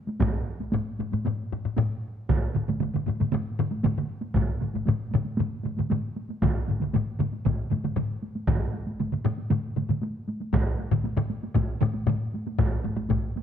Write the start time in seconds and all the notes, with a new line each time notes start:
0.07 taiko high
0.20 taiko, taiko low-mid, taiko high
0.60 taiko high
0.72 taiko low-mid, taiko high
0.99 taiko low-mid, taiko high
1.12 taiko low-mid, taiko high
1.25 taiko low-mid, taiko high
1.52 taiko low-mid
1.65 taiko low-mid
1.76 taiko low-mid, taiko high
2.29 taiko, taiko low-mid, taiko mid, taiko high
2.55 taiko low-mid, taiko mid
2.68 taiko low-mid, taiko mid, taiko high
2.80 taiko low-mid, taiko mid, taiko high
2.94 taiko low-mid, taiko mid
3.06 taiko low-mid, taiko mid, taiko high
3.20 taiko low-mid, taiko mid, taiko high
3.32 taiko low-mid, taiko mid, taiko high
3.59 taiko low-mid, taiko mid
3.71 taiko high
3.83 taiko low-mid, taiko mid, taiko high
3.98 taiko low-mid, taiko mid
4.21 taiko high
4.34 taiko, taiko low-mid, taiko mid, taiko high
4.61 taiko low-mid, taiko mid, taiko high
4.74 taiko low-mid, taiko mid, taiko high
4.86 taiko low-mid, taiko mid, taiko high
5.12 taiko low-mid, taiko mid, taiko high
5.25 taiko high
5.37 taiko low-mid, taiko mid, taiko high
5.64 taiko low-mid, taiko mid, taiko high
5.77 taiko low-mid, taiko mid, taiko high
5.90 taiko low-mid, taiko mid, taiko high
6.16 taiko high
6.29 taiko high
6.42 taiko, taiko low-mid, taiko mid, taiko high
6.67 taiko low-mid, taiko mid, taiko high
6.80 taiko low-mid, taiko mid, taiko high
6.93 taiko low-mid, taiko mid, taiko high
7.19 taiko low-mid, taiko mid, taiko high
7.32 taiko high
7.46 taiko, taiko low-mid, taiko mid, taiko high
7.71 taiko low-mid, taiko mid, taiko high
7.84 taiko low-mid, taiko mid, taiko high
7.97 taiko low-mid, taiko mid, taiko high
8.23 taiko high
8.35 taiko high
8.47 taiko, taiko low-mid, taiko mid, taiko high
8.74 taiko high
8.87 taiko high
9.00 taiko low-mid, taiko mid, taiko high
9.12 taiko low-mid, taiko mid
9.25 taiko low-mid, taiko mid, taiko high
9.38 taiko high
9.50 taiko low-mid, taiko mid, taiko high
9.76 taiko low-mid, taiko mid, taiko high
9.89 taiko low-mid, taiko mid, taiko high
10.02 taiko high
10.28 taiko high
10.40 taiko high
10.53 taiko, taiko low-mid, taiko mid, taiko high
10.79 taiko high
10.91 taiko low-mid, taiko mid, taiko high
11.04 taiko high
11.17 taiko low-mid, taiko mid
11.30 taiko high
11.43 taiko high
11.55 taiko, taiko low-mid, taiko mid, taiko high
11.81 taiko low-mid, taiko mid, taiko high
11.94 taiko high
12.07 taiko low-mid, taiko mid, taiko high
12.34 taiko high
12.47 taiko high
12.58 taiko, taiko low-mid, taiko high
12.84 taiko low-mid, taiko high
12.97 taiko low-mid, taiko high
13.09 taiko, taiko low-mid, taiko high
13.36 taiko high